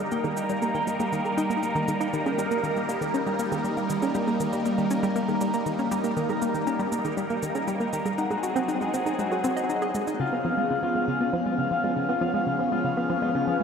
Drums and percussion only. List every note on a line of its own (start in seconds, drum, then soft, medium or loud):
0.11 cabasa soft
0.24 low bongo medium
0.24 cabasa soft
0.37 cabasa medium
0.49 cabasa medium
0.62 cabasa soft
0.75 cabasa soft
0.87 cabasa medium
1.00 low bongo soft
1.00 cabasa medium
1.13 cabasa soft
1.25 low bongo medium
1.25 cabasa soft
1.38 cabasa medium
1.50 cabasa soft
1.63 cabasa medium
1.75 cabasa soft
1.88 low bongo soft
1.88 cabasa medium
2.01 cabasa medium
2.13 cabasa medium
2.26 low bongo medium
2.26 cabasa soft
2.39 cabasa medium
2.51 cabasa soft
2.64 cabasa soft
2.77 cabasa soft
2.89 cabasa medium
3.02 low bongo soft
3.02 cabasa soft
3.14 cabasa soft
3.27 cabasa soft
3.39 cabasa medium
3.52 low bongo medium
3.52 cabasa soft
3.65 cabasa medium
3.77 cabasa soft
3.90 cabasa medium
4.02 low bongo medium
4.02 cabasa soft
4.15 cabasa soft
4.27 low bongo medium
4.27 cabasa soft
4.40 cabasa medium
4.53 cabasa soft
4.65 cabasa soft
4.78 cabasa soft
4.91 cabasa medium
5.03 low bongo soft
5.03 cabasa soft
5.16 cabasa soft
5.28 low bongo medium
5.28 cabasa soft
5.41 cabasa medium
5.54 cabasa soft
5.66 cabasa soft
5.79 cabasa soft
5.91 cabasa medium
6.04 cabasa soft
6.17 cabasa soft
6.29 low bongo medium
6.29 cabasa soft
6.42 cabasa medium
6.55 cabasa soft
6.67 cabasa soft
6.80 cabasa soft
6.92 cabasa medium
7.05 low bongo soft
7.05 cabasa soft
7.17 cabasa soft
7.30 cabasa soft
7.43 cabasa medium
7.55 low bongo medium
7.55 cabasa soft
7.68 cabasa medium
7.80 cabasa soft
7.93 cabasa medium
8.06 low bongo medium
8.06 cabasa soft
8.18 cabasa soft
8.31 low bongo medium
8.31 cabasa soft
8.43 cabasa medium
8.56 cabasa soft
8.69 cabasa soft
8.81 cabasa soft
8.94 cabasa medium
9.06 low bongo soft
9.06 cabasa soft
9.19 cabasa soft
9.32 low bongo medium
9.32 cabasa soft
9.44 cabasa medium
9.57 cabasa soft
9.70 cabasa soft
9.82 cabasa soft
9.95 low bongo medium
9.95 cabasa medium
10.07 cabasa soft